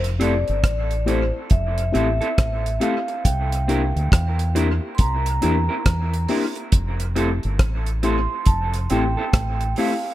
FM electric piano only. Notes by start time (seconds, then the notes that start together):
0.19 A3 C4 E4 G4
1.06 A3 C4 E4 G4
1.33 E4 G4
1.92 A3 C4 E4 G4
2.80 A3 C4 E4 G4
3.67 A#3 D4 E4 G4
4.55 A#3 D4 E4 G4
4.82 E4 G4
5.41 A#3 D4 E4 G4
6.29 A#3 D4 E4 G4
7.16 A3 C4 E4 G4
8.03 A3 C4 E4 G4
8.30 E4 G4
8.91 A3 C4 E4 G4
9.78 A3 C4 E4 G4